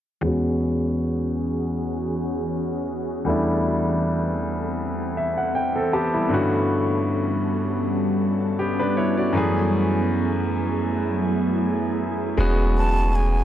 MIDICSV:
0, 0, Header, 1, 5, 480
1, 0, Start_track
1, 0, Key_signature, 4, "major"
1, 0, Tempo, 759494
1, 145, Time_signature, 4, 2, 24, 8
1, 8494, End_track
2, 0, Start_track
2, 0, Title_t, "Flute"
2, 0, Program_c, 0, 73
2, 8073, Note_on_c, 0, 81, 102
2, 8312, Note_on_c, 0, 80, 95
2, 8321, Note_off_c, 0, 81, 0
2, 8494, Note_off_c, 0, 80, 0
2, 8494, End_track
3, 0, Start_track
3, 0, Title_t, "Ambient pad"
3, 0, Program_c, 1, 92
3, 144, Note_on_c, 1, 52, 74
3, 144, Note_on_c, 1, 61, 69
3, 145, Note_on_c, 1, 66, 67
3, 145, Note_on_c, 1, 68, 76
3, 2046, Note_off_c, 1, 61, 0
3, 2046, Note_off_c, 1, 66, 0
3, 2046, Note_off_c, 1, 68, 0
3, 2066, Note_on_c, 1, 60, 66
3, 2067, Note_on_c, 1, 69, 79
3, 3960, Note_off_c, 1, 52, 0
3, 3967, Note_off_c, 1, 60, 0
3, 3986, Note_on_c, 1, 66, 66
3, 3987, Note_on_c, 1, 61, 70
3, 3988, Note_on_c, 1, 55, 78
3, 3988, Note_on_c, 1, 59, 71
3, 5881, Note_off_c, 1, 69, 0
3, 5887, Note_off_c, 1, 55, 0
3, 5887, Note_off_c, 1, 61, 0
3, 5887, Note_off_c, 1, 66, 0
3, 5905, Note_on_c, 1, 54, 78
3, 5905, Note_on_c, 1, 68, 84
3, 5906, Note_on_c, 1, 57, 67
3, 5906, Note_on_c, 1, 64, 71
3, 7801, Note_off_c, 1, 59, 0
3, 7806, Note_off_c, 1, 54, 0
3, 7806, Note_off_c, 1, 57, 0
3, 7806, Note_off_c, 1, 68, 0
3, 7807, Note_off_c, 1, 64, 0
3, 7825, Note_on_c, 1, 56, 65
3, 7826, Note_on_c, 1, 49, 71
3, 7826, Note_on_c, 1, 66, 83
3, 8494, Note_off_c, 1, 49, 0
3, 8494, Note_off_c, 1, 56, 0
3, 8494, Note_off_c, 1, 66, 0
3, 8494, End_track
4, 0, Start_track
4, 0, Title_t, "Grand piano"
4, 0, Program_c, 2, 0
4, 133, Note_on_c, 2, 40, 68
4, 141, Note_on_c, 2, 56, 60
4, 149, Note_on_c, 2, 59, 61
4, 156, Note_on_c, 2, 61, 67
4, 164, Note_on_c, 2, 66, 75
4, 279, Control_c, 2, 64, 127
4, 2034, Note_off_c, 2, 40, 0
4, 2038, Note_off_c, 2, 56, 0
4, 2042, Note_off_c, 2, 59, 0
4, 2046, Note_off_c, 2, 61, 0
4, 2050, Note_off_c, 2, 66, 0
4, 2052, Note_on_c, 2, 40, 68
4, 2060, Note_on_c, 2, 55, 66
4, 2067, Note_on_c, 2, 57, 65
4, 2075, Control_c, 2, 64, 0
4, 2075, Note_on_c, 2, 62, 65
4, 2082, Note_on_c, 2, 64, 74
4, 2168, Control_c, 2, 64, 127
4, 3269, Note_on_c, 2, 76, 66
4, 3388, Note_off_c, 2, 76, 0
4, 3397, Note_on_c, 2, 78, 60
4, 3477, Note_off_c, 2, 55, 0
4, 3481, Note_off_c, 2, 57, 0
4, 3485, Note_off_c, 2, 62, 0
4, 3488, Note_off_c, 2, 64, 0
4, 3499, Note_off_c, 2, 78, 0
4, 3508, Note_on_c, 2, 79, 72
4, 3639, Note_on_c, 2, 69, 63
4, 3643, Note_on_c, 2, 60, 53
4, 3730, Note_off_c, 2, 79, 0
4, 3742, Note_off_c, 2, 69, 0
4, 3744, Note_off_c, 2, 60, 0
4, 3750, Note_on_c, 2, 67, 66
4, 3750, Note_on_c, 2, 81, 65
4, 3754, Note_on_c, 2, 59, 57
4, 3871, Note_off_c, 2, 67, 0
4, 3873, Note_off_c, 2, 59, 0
4, 3880, Note_on_c, 2, 64, 61
4, 3883, Note_on_c, 2, 55, 49
4, 3953, Note_off_c, 2, 40, 0
4, 3971, Note_off_c, 2, 81, 0
4, 3975, Note_on_c, 2, 43, 69
4, 3980, Note_on_c, 2, 50, 65
4, 3988, Note_on_c, 2, 57, 66
4, 3993, Control_c, 2, 64, 0
4, 3993, Note_on_c, 2, 59, 62
4, 3999, Note_on_c, 2, 61, 64
4, 4005, Note_on_c, 2, 66, 80
4, 4094, Control_c, 2, 64, 127
4, 4106, Note_off_c, 2, 64, 0
4, 4107, Note_off_c, 2, 55, 0
4, 5404, Note_off_c, 2, 59, 0
4, 5407, Note_off_c, 2, 61, 0
4, 5410, Note_off_c, 2, 66, 0
4, 5429, Note_on_c, 2, 67, 61
4, 5433, Note_on_c, 2, 59, 50
4, 5551, Note_off_c, 2, 67, 0
4, 5552, Note_off_c, 2, 59, 0
4, 5558, Note_on_c, 2, 71, 64
4, 5562, Note_on_c, 2, 62, 57
4, 5662, Note_off_c, 2, 71, 0
4, 5664, Note_off_c, 2, 62, 0
4, 5670, Note_on_c, 2, 73, 64
4, 5674, Note_on_c, 2, 64, 56
4, 5791, Note_off_c, 2, 73, 0
4, 5793, Note_off_c, 2, 64, 0
4, 5798, Note_on_c, 2, 74, 58
4, 5802, Note_on_c, 2, 66, 51
4, 5875, Note_off_c, 2, 43, 0
4, 5878, Note_off_c, 2, 50, 0
4, 5881, Note_off_c, 2, 57, 0
4, 5895, Note_on_c, 2, 42, 74
4, 5901, Note_on_c, 2, 52, 63
4, 5906, Note_on_c, 2, 57, 66
4, 5912, Note_on_c, 2, 59, 69
4, 5913, Control_c, 2, 64, 0
4, 5918, Note_on_c, 2, 61, 64
4, 5925, Note_on_c, 2, 68, 82
4, 6025, Note_off_c, 2, 74, 0
4, 6025, Control_c, 2, 64, 127
4, 6027, Note_off_c, 2, 66, 0
4, 7795, Note_off_c, 2, 42, 0
4, 7798, Note_off_c, 2, 52, 0
4, 7801, Note_off_c, 2, 57, 0
4, 7804, Note_off_c, 2, 59, 0
4, 7807, Note_off_c, 2, 61, 0
4, 7810, Note_off_c, 2, 68, 0
4, 7820, Note_on_c, 2, 56, 83
4, 7825, Note_on_c, 2, 59, 78
4, 7830, Note_on_c, 2, 61, 78
4, 7833, Control_c, 2, 64, 0
4, 7836, Note_on_c, 2, 66, 90
4, 7945, Control_c, 2, 64, 127
4, 8472, Note_off_c, 2, 56, 0
4, 8474, Note_off_c, 2, 59, 0
4, 8477, Note_off_c, 2, 61, 0
4, 8480, Note_off_c, 2, 66, 0
4, 8494, End_track
5, 0, Start_track
5, 0, Title_t, "808-style bass"
5, 0, Program_c, 3, 38
5, 7826, Note_on_c, 3, 28, 110
5, 8494, Note_off_c, 3, 28, 0
5, 8494, End_track
0, 0, End_of_file